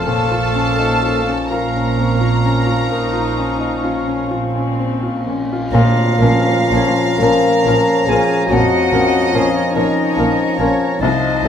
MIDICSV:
0, 0, Header, 1, 14, 480
1, 0, Start_track
1, 0, Key_signature, -5, "minor"
1, 0, Tempo, 958466
1, 33, Time_signature, 12, 3, 24, 8
1, 992, Tempo, 936037
1, 2912, Tempo, 963082
1, 3872, Tempo, 845070
1, 6047, End_track
2, 0, Start_track
2, 0, Title_t, "Oboe"
2, 0, Program_c, 0, 68
2, 25, Note_on_c, 0, 77, 74
2, 670, Note_off_c, 0, 77, 0
2, 755, Note_on_c, 0, 77, 55
2, 2172, Note_off_c, 0, 77, 0
2, 2912, Note_on_c, 0, 82, 71
2, 5764, Note_off_c, 0, 82, 0
2, 5781, Note_on_c, 0, 81, 70
2, 6047, Note_off_c, 0, 81, 0
2, 6047, End_track
3, 0, Start_track
3, 0, Title_t, "Flute section"
3, 0, Program_c, 1, 73
3, 33, Note_on_c, 1, 85, 58
3, 741, Note_off_c, 1, 85, 0
3, 755, Note_on_c, 1, 85, 53
3, 2710, Note_off_c, 1, 85, 0
3, 2915, Note_on_c, 1, 77, 94
3, 3630, Note_off_c, 1, 77, 0
3, 3651, Note_on_c, 1, 82, 95
3, 4116, Note_off_c, 1, 82, 0
3, 4121, Note_on_c, 1, 80, 80
3, 4357, Note_off_c, 1, 80, 0
3, 4361, Note_on_c, 1, 78, 92
3, 4832, Note_on_c, 1, 77, 78
3, 4834, Note_off_c, 1, 78, 0
3, 4944, Note_on_c, 1, 73, 71
3, 4951, Note_off_c, 1, 77, 0
3, 5059, Note_on_c, 1, 75, 82
3, 5068, Note_off_c, 1, 73, 0
3, 5531, Note_off_c, 1, 75, 0
3, 5533, Note_on_c, 1, 73, 76
3, 5778, Note_on_c, 1, 75, 90
3, 5780, Note_off_c, 1, 73, 0
3, 6047, Note_off_c, 1, 75, 0
3, 6047, End_track
4, 0, Start_track
4, 0, Title_t, "Violin section"
4, 0, Program_c, 2, 48
4, 19, Note_on_c, 2, 81, 88
4, 733, Note_off_c, 2, 81, 0
4, 750, Note_on_c, 2, 82, 69
4, 2190, Note_off_c, 2, 82, 0
4, 2907, Note_on_c, 2, 73, 62
4, 2947, Note_off_c, 2, 73, 0
4, 3157, Note_on_c, 2, 73, 61
4, 3197, Note_off_c, 2, 73, 0
4, 3401, Note_on_c, 2, 73, 58
4, 3441, Note_off_c, 2, 73, 0
4, 3638, Note_on_c, 2, 73, 66
4, 3678, Note_off_c, 2, 73, 0
4, 3866, Note_on_c, 2, 73, 59
4, 3910, Note_off_c, 2, 73, 0
4, 4107, Note_on_c, 2, 73, 60
4, 4152, Note_off_c, 2, 73, 0
4, 4348, Note_on_c, 2, 73, 69
4, 4393, Note_off_c, 2, 73, 0
4, 4599, Note_on_c, 2, 73, 58
4, 4644, Note_off_c, 2, 73, 0
4, 4847, Note_on_c, 2, 73, 67
4, 4892, Note_off_c, 2, 73, 0
4, 5085, Note_on_c, 2, 73, 63
4, 5131, Note_off_c, 2, 73, 0
4, 5324, Note_on_c, 2, 73, 62
4, 5369, Note_off_c, 2, 73, 0
4, 5554, Note_on_c, 2, 73, 58
4, 5600, Note_off_c, 2, 73, 0
4, 5797, Note_on_c, 2, 75, 62
4, 5843, Note_off_c, 2, 75, 0
4, 6029, Note_on_c, 2, 75, 60
4, 6047, Note_off_c, 2, 75, 0
4, 6047, End_track
5, 0, Start_track
5, 0, Title_t, "Violin section"
5, 0, Program_c, 3, 48
5, 13, Note_on_c, 3, 69, 74
5, 730, Note_off_c, 3, 69, 0
5, 745, Note_on_c, 3, 70, 55
5, 2188, Note_off_c, 3, 70, 0
5, 2907, Note_on_c, 3, 77, 84
5, 4329, Note_off_c, 3, 77, 0
5, 4357, Note_on_c, 3, 75, 90
5, 5072, Note_off_c, 3, 75, 0
5, 5084, Note_on_c, 3, 73, 75
5, 5778, Note_off_c, 3, 73, 0
5, 5793, Note_on_c, 3, 72, 83
5, 6047, Note_off_c, 3, 72, 0
5, 6047, End_track
6, 0, Start_track
6, 0, Title_t, "Clarinet"
6, 0, Program_c, 4, 71
6, 32, Note_on_c, 4, 69, 77
6, 669, Note_off_c, 4, 69, 0
6, 754, Note_on_c, 4, 70, 61
6, 2172, Note_off_c, 4, 70, 0
6, 2917, Note_on_c, 4, 73, 75
6, 5785, Note_on_c, 4, 75, 72
6, 5793, Note_off_c, 4, 73, 0
6, 6047, Note_off_c, 4, 75, 0
6, 6047, End_track
7, 0, Start_track
7, 0, Title_t, "French horn section"
7, 0, Program_c, 5, 60
7, 501, Note_on_c, 5, 61, 55
7, 505, Note_on_c, 5, 53, 52
7, 590, Note_off_c, 5, 61, 0
7, 593, Note_off_c, 5, 53, 0
7, 1231, Note_on_c, 5, 53, 55
7, 1236, Note_on_c, 5, 61, 54
7, 1316, Note_off_c, 5, 53, 0
7, 1319, Note_off_c, 5, 61, 0
7, 1950, Note_on_c, 5, 61, 54
7, 1952, Note_on_c, 5, 53, 57
7, 2035, Note_off_c, 5, 61, 0
7, 2036, Note_off_c, 5, 53, 0
7, 2666, Note_on_c, 5, 61, 55
7, 2668, Note_on_c, 5, 53, 56
7, 2752, Note_off_c, 5, 61, 0
7, 2753, Note_off_c, 5, 53, 0
7, 2911, Note_on_c, 5, 65, 107
7, 3628, Note_off_c, 5, 65, 0
7, 3640, Note_on_c, 5, 70, 110
7, 4102, Note_on_c, 5, 68, 98
7, 4109, Note_off_c, 5, 70, 0
7, 4333, Note_on_c, 5, 66, 104
7, 4348, Note_off_c, 5, 68, 0
7, 4818, Note_on_c, 5, 65, 91
7, 4820, Note_off_c, 5, 66, 0
7, 4929, Note_on_c, 5, 61, 84
7, 4944, Note_off_c, 5, 65, 0
7, 5040, Note_on_c, 5, 63, 105
7, 5060, Note_off_c, 5, 61, 0
7, 5531, Note_off_c, 5, 63, 0
7, 5537, Note_on_c, 5, 61, 87
7, 5763, Note_on_c, 5, 63, 96
7, 5781, Note_off_c, 5, 61, 0
7, 6047, Note_off_c, 5, 63, 0
7, 6047, End_track
8, 0, Start_track
8, 0, Title_t, "Grand piano"
8, 0, Program_c, 6, 0
8, 0, Control_c, 6, 64, 127
8, 35, Note_on_c, 6, 46, 62
8, 42, Control_c, 6, 64, 0
8, 149, Control_c, 6, 64, 127
8, 157, Note_on_c, 6, 65, 48
8, 271, Note_on_c, 6, 61, 53
8, 350, Note_off_c, 6, 65, 0
8, 397, Note_on_c, 6, 63, 39
8, 467, Note_off_c, 6, 61, 0
8, 512, Note_on_c, 6, 65, 50
8, 517, Note_off_c, 6, 63, 0
8, 635, Note_on_c, 6, 61, 46
8, 705, Note_off_c, 6, 65, 0
8, 754, Note_on_c, 6, 65, 50
8, 825, Note_off_c, 6, 61, 0
8, 877, Note_on_c, 6, 61, 42
8, 944, Note_off_c, 6, 65, 0
8, 995, Note_on_c, 6, 60, 42
8, 1067, Note_off_c, 6, 61, 0
8, 1109, Note_on_c, 6, 65, 49
8, 1115, Note_off_c, 6, 60, 0
8, 1230, Note_on_c, 6, 61, 49
8, 1304, Note_off_c, 6, 65, 0
8, 1342, Note_on_c, 6, 65, 52
8, 1424, Note_off_c, 6, 61, 0
8, 1455, Note_off_c, 6, 46, 0
8, 1473, Note_on_c, 6, 58, 47
8, 1539, Note_off_c, 6, 65, 0
8, 1583, Note_on_c, 6, 65, 49
8, 1665, Note_off_c, 6, 58, 0
8, 1708, Note_on_c, 6, 61, 51
8, 1781, Note_off_c, 6, 65, 0
8, 1825, Note_on_c, 6, 63, 39
8, 1904, Note_off_c, 6, 61, 0
8, 1945, Note_on_c, 6, 65, 49
8, 1950, Note_off_c, 6, 63, 0
8, 2062, Note_on_c, 6, 61, 47
8, 2140, Note_off_c, 6, 65, 0
8, 2185, Note_on_c, 6, 65, 49
8, 2257, Note_off_c, 6, 61, 0
8, 2311, Note_on_c, 6, 61, 50
8, 2378, Note_off_c, 6, 65, 0
8, 2431, Note_on_c, 6, 60, 43
8, 2501, Note_off_c, 6, 61, 0
8, 2550, Note_off_c, 6, 60, 0
8, 2555, Note_on_c, 6, 65, 48
8, 2689, Note_on_c, 6, 61, 49
8, 2747, Note_off_c, 6, 65, 0
8, 2810, Note_on_c, 6, 65, 53
8, 2873, Note_off_c, 6, 61, 0
8, 2919, Note_off_c, 6, 65, 0
8, 2920, Control_c, 6, 64, 0
8, 2923, Note_on_c, 6, 46, 85
8, 3008, Control_c, 6, 64, 127
8, 3148, Note_off_c, 6, 46, 0
8, 3157, Note_on_c, 6, 53, 59
8, 3159, Note_on_c, 6, 61, 61
8, 3159, Note_on_c, 6, 70, 66
8, 3386, Note_off_c, 6, 53, 0
8, 3387, Note_off_c, 6, 61, 0
8, 3388, Note_off_c, 6, 70, 0
8, 3410, Note_on_c, 6, 61, 56
8, 3411, Note_on_c, 6, 53, 61
8, 3415, Note_on_c, 6, 70, 65
8, 3632, Note_off_c, 6, 53, 0
8, 3632, Note_off_c, 6, 61, 0
8, 3633, Note_off_c, 6, 70, 0
8, 3660, Note_on_c, 6, 53, 60
8, 3660, Note_on_c, 6, 70, 65
8, 3662, Note_on_c, 6, 61, 60
8, 3857, Note_off_c, 6, 53, 0
8, 3857, Note_off_c, 6, 70, 0
8, 3858, Note_off_c, 6, 61, 0
8, 3878, Note_on_c, 6, 53, 59
8, 3888, Note_on_c, 6, 70, 68
8, 3889, Note_on_c, 6, 61, 58
8, 4095, Note_off_c, 6, 53, 0
8, 4100, Note_off_c, 6, 61, 0
8, 4100, Note_off_c, 6, 70, 0
8, 4132, Note_on_c, 6, 53, 55
8, 4136, Note_on_c, 6, 61, 56
8, 4139, Note_on_c, 6, 70, 61
8, 4340, Note_off_c, 6, 53, 0
8, 4342, Note_off_c, 6, 61, 0
8, 4343, Note_off_c, 6, 70, 0
8, 4369, Note_on_c, 6, 41, 68
8, 4593, Note_off_c, 6, 41, 0
8, 4593, Note_on_c, 6, 53, 55
8, 4599, Note_on_c, 6, 61, 57
8, 4603, Note_on_c, 6, 70, 62
8, 4809, Note_off_c, 6, 53, 0
8, 4811, Note_off_c, 6, 61, 0
8, 4814, Note_off_c, 6, 70, 0
8, 4835, Note_on_c, 6, 53, 60
8, 4835, Note_on_c, 6, 70, 60
8, 4841, Note_on_c, 6, 61, 56
8, 5050, Note_off_c, 6, 53, 0
8, 5050, Note_off_c, 6, 70, 0
8, 5053, Note_off_c, 6, 61, 0
8, 5069, Note_on_c, 6, 53, 59
8, 5070, Note_on_c, 6, 70, 65
8, 5073, Note_on_c, 6, 61, 59
8, 5286, Note_off_c, 6, 53, 0
8, 5286, Note_off_c, 6, 70, 0
8, 5288, Note_off_c, 6, 61, 0
8, 5304, Note_on_c, 6, 53, 59
8, 5307, Note_on_c, 6, 61, 54
8, 5313, Note_on_c, 6, 70, 63
8, 5521, Note_off_c, 6, 53, 0
8, 5522, Note_off_c, 6, 61, 0
8, 5525, Note_off_c, 6, 70, 0
8, 5543, Note_on_c, 6, 53, 60
8, 5550, Note_on_c, 6, 70, 66
8, 5551, Note_on_c, 6, 61, 55
8, 5762, Note_off_c, 6, 53, 0
8, 5765, Note_off_c, 6, 70, 0
8, 5766, Note_off_c, 6, 61, 0
8, 5788, Note_on_c, 6, 36, 84
8, 5798, Control_c, 6, 64, 0
8, 5893, Control_c, 6, 64, 127
8, 6019, Note_on_c, 6, 53, 58
8, 6023, Note_off_c, 6, 36, 0
8, 6029, Note_on_c, 6, 63, 59
8, 6047, Note_off_c, 6, 53, 0
8, 6047, Note_off_c, 6, 63, 0
8, 6047, End_track
9, 0, Start_track
9, 0, Title_t, "Viola section"
9, 0, Program_c, 7, 48
9, 24, Note_on_c, 7, 61, 52
9, 25, Note_on_c, 7, 58, 48
9, 139, Note_off_c, 7, 58, 0
9, 141, Note_off_c, 7, 61, 0
9, 145, Note_on_c, 7, 58, 41
9, 146, Note_on_c, 7, 53, 41
9, 257, Note_off_c, 7, 58, 0
9, 263, Note_on_c, 7, 58, 46
9, 267, Note_on_c, 7, 61, 43
9, 272, Note_off_c, 7, 53, 0
9, 375, Note_off_c, 7, 58, 0
9, 381, Note_on_c, 7, 58, 47
9, 383, Note_on_c, 7, 53, 45
9, 392, Note_off_c, 7, 61, 0
9, 503, Note_off_c, 7, 58, 0
9, 509, Note_on_c, 7, 58, 47
9, 509, Note_on_c, 7, 61, 44
9, 510, Note_off_c, 7, 53, 0
9, 618, Note_off_c, 7, 58, 0
9, 623, Note_off_c, 7, 61, 0
9, 624, Note_on_c, 7, 58, 44
9, 626, Note_on_c, 7, 53, 42
9, 737, Note_off_c, 7, 58, 0
9, 743, Note_on_c, 7, 58, 64
9, 750, Note_off_c, 7, 53, 0
9, 1447, Note_off_c, 7, 58, 0
9, 1467, Note_on_c, 7, 63, 73
9, 1942, Note_off_c, 7, 63, 0
9, 1949, Note_on_c, 7, 61, 57
9, 2186, Note_on_c, 7, 60, 67
9, 2190, Note_off_c, 7, 61, 0
9, 2666, Note_on_c, 7, 58, 55
9, 2667, Note_off_c, 7, 60, 0
9, 2900, Note_off_c, 7, 58, 0
9, 2906, Note_on_c, 7, 58, 74
9, 2907, Note_on_c, 7, 70, 72
9, 2946, Note_off_c, 7, 58, 0
9, 2947, Note_off_c, 7, 70, 0
9, 3144, Note_on_c, 7, 70, 62
9, 3145, Note_on_c, 7, 58, 65
9, 3184, Note_off_c, 7, 70, 0
9, 3185, Note_off_c, 7, 58, 0
9, 3401, Note_on_c, 7, 58, 63
9, 3401, Note_on_c, 7, 70, 62
9, 3440, Note_off_c, 7, 58, 0
9, 3441, Note_off_c, 7, 70, 0
9, 3649, Note_on_c, 7, 58, 65
9, 3649, Note_on_c, 7, 70, 64
9, 3689, Note_off_c, 7, 58, 0
9, 3689, Note_off_c, 7, 70, 0
9, 3867, Note_on_c, 7, 70, 58
9, 3870, Note_on_c, 7, 58, 56
9, 3912, Note_off_c, 7, 70, 0
9, 3915, Note_off_c, 7, 58, 0
9, 4114, Note_on_c, 7, 70, 54
9, 4116, Note_on_c, 7, 58, 59
9, 4159, Note_off_c, 7, 70, 0
9, 4162, Note_off_c, 7, 58, 0
9, 4361, Note_on_c, 7, 58, 63
9, 4362, Note_on_c, 7, 70, 62
9, 4407, Note_off_c, 7, 58, 0
9, 4407, Note_off_c, 7, 70, 0
9, 4598, Note_on_c, 7, 70, 63
9, 4599, Note_on_c, 7, 58, 64
9, 4643, Note_off_c, 7, 70, 0
9, 4644, Note_off_c, 7, 58, 0
9, 4832, Note_on_c, 7, 58, 61
9, 4834, Note_on_c, 7, 70, 61
9, 4877, Note_off_c, 7, 58, 0
9, 4879, Note_off_c, 7, 70, 0
9, 5069, Note_on_c, 7, 58, 63
9, 5075, Note_on_c, 7, 70, 62
9, 5115, Note_off_c, 7, 58, 0
9, 5120, Note_off_c, 7, 70, 0
9, 5312, Note_on_c, 7, 70, 57
9, 5313, Note_on_c, 7, 58, 60
9, 5358, Note_off_c, 7, 70, 0
9, 5359, Note_off_c, 7, 58, 0
9, 5548, Note_on_c, 7, 70, 57
9, 5551, Note_on_c, 7, 58, 60
9, 5594, Note_off_c, 7, 70, 0
9, 5596, Note_off_c, 7, 58, 0
9, 5793, Note_on_c, 7, 65, 72
9, 5794, Note_on_c, 7, 57, 71
9, 5839, Note_off_c, 7, 57, 0
9, 5839, Note_off_c, 7, 65, 0
9, 6047, End_track
10, 0, Start_track
10, 0, Title_t, "Trombone section"
10, 0, Program_c, 8, 61
10, 3417, Note_on_c, 8, 53, 68
10, 3419, Note_on_c, 8, 61, 73
10, 3499, Note_off_c, 8, 53, 0
10, 3501, Note_off_c, 8, 61, 0
10, 4117, Note_on_c, 8, 61, 73
10, 4119, Note_on_c, 8, 53, 70
10, 4200, Note_off_c, 8, 61, 0
10, 4201, Note_off_c, 8, 53, 0
10, 4831, Note_on_c, 8, 61, 72
10, 4837, Note_on_c, 8, 53, 72
10, 4915, Note_off_c, 8, 61, 0
10, 4919, Note_off_c, 8, 53, 0
10, 5545, Note_on_c, 8, 53, 69
10, 5546, Note_on_c, 8, 61, 73
10, 5629, Note_off_c, 8, 53, 0
10, 5629, Note_off_c, 8, 61, 0
10, 6047, End_track
11, 0, Start_track
11, 0, Title_t, "Bassoon"
11, 0, Program_c, 10, 70
11, 31, Note_on_c, 10, 53, 54
11, 739, Note_off_c, 10, 53, 0
11, 754, Note_on_c, 10, 53, 58
11, 2710, Note_off_c, 10, 53, 0
11, 2913, Note_on_c, 10, 53, 75
11, 5765, Note_off_c, 10, 53, 0
11, 5787, Note_on_c, 10, 53, 69
11, 6047, Note_off_c, 10, 53, 0
11, 6047, End_track
12, 0, Start_track
12, 0, Title_t, "Cello section"
12, 0, Program_c, 11, 48
12, 29, Note_on_c, 11, 46, 63
12, 669, Note_off_c, 11, 46, 0
12, 750, Note_on_c, 11, 46, 58
12, 1386, Note_off_c, 11, 46, 0
12, 1470, Note_on_c, 11, 46, 58
12, 2107, Note_off_c, 11, 46, 0
12, 2190, Note_on_c, 11, 46, 61
12, 2825, Note_off_c, 11, 46, 0
12, 2918, Note_on_c, 11, 46, 80
12, 2958, Note_off_c, 11, 46, 0
12, 3155, Note_on_c, 11, 46, 66
12, 3195, Note_off_c, 11, 46, 0
12, 3409, Note_on_c, 11, 46, 65
12, 3449, Note_off_c, 11, 46, 0
12, 3652, Note_on_c, 11, 46, 72
12, 3692, Note_off_c, 11, 46, 0
12, 3870, Note_on_c, 11, 46, 69
12, 3915, Note_off_c, 11, 46, 0
12, 4116, Note_on_c, 11, 46, 71
12, 4161, Note_off_c, 11, 46, 0
12, 4359, Note_on_c, 11, 46, 69
12, 4405, Note_off_c, 11, 46, 0
12, 4593, Note_on_c, 11, 46, 65
12, 4639, Note_off_c, 11, 46, 0
12, 4834, Note_on_c, 11, 46, 67
12, 4880, Note_off_c, 11, 46, 0
12, 5070, Note_on_c, 11, 46, 73
12, 5115, Note_off_c, 11, 46, 0
12, 5310, Note_on_c, 11, 46, 69
12, 5356, Note_off_c, 11, 46, 0
12, 5544, Note_on_c, 11, 46, 65
12, 5589, Note_off_c, 11, 46, 0
12, 5779, Note_on_c, 11, 48, 75
12, 5824, Note_off_c, 11, 48, 0
12, 6024, Note_on_c, 11, 48, 65
12, 6047, Note_off_c, 11, 48, 0
12, 6047, End_track
13, 0, Start_track
13, 0, Title_t, "Double bass section"
13, 0, Program_c, 12, 48
13, 36, Note_on_c, 12, 34, 60
13, 672, Note_off_c, 12, 34, 0
13, 757, Note_on_c, 12, 34, 57
13, 1390, Note_off_c, 12, 34, 0
13, 1472, Note_on_c, 12, 34, 56
13, 2108, Note_off_c, 12, 34, 0
13, 2190, Note_on_c, 12, 34, 59
13, 2825, Note_off_c, 12, 34, 0
13, 2911, Note_on_c, 12, 34, 84
13, 2951, Note_off_c, 12, 34, 0
13, 3147, Note_on_c, 12, 34, 68
13, 3187, Note_off_c, 12, 34, 0
13, 3400, Note_on_c, 12, 34, 66
13, 3440, Note_off_c, 12, 34, 0
13, 3643, Note_on_c, 12, 34, 68
13, 3683, Note_off_c, 12, 34, 0
13, 3870, Note_on_c, 12, 34, 68
13, 3915, Note_off_c, 12, 34, 0
13, 4108, Note_on_c, 12, 34, 64
13, 4153, Note_off_c, 12, 34, 0
13, 4354, Note_on_c, 12, 34, 74
13, 4399, Note_off_c, 12, 34, 0
13, 4589, Note_on_c, 12, 34, 74
13, 4634, Note_off_c, 12, 34, 0
13, 4831, Note_on_c, 12, 34, 63
13, 4876, Note_off_c, 12, 34, 0
13, 5069, Note_on_c, 12, 34, 67
13, 5114, Note_off_c, 12, 34, 0
13, 5307, Note_on_c, 12, 34, 66
13, 5353, Note_off_c, 12, 34, 0
13, 5537, Note_on_c, 12, 34, 69
13, 5582, Note_off_c, 12, 34, 0
13, 5782, Note_on_c, 12, 36, 72
13, 5827, Note_off_c, 12, 36, 0
13, 6021, Note_on_c, 12, 36, 65
13, 6047, Note_off_c, 12, 36, 0
13, 6047, End_track
14, 0, Start_track
14, 0, Title_t, "Tam-tam"
14, 2917, Note_on_c, 9, 52, 59
14, 2967, Note_off_c, 9, 52, 0
14, 6047, End_track
0, 0, End_of_file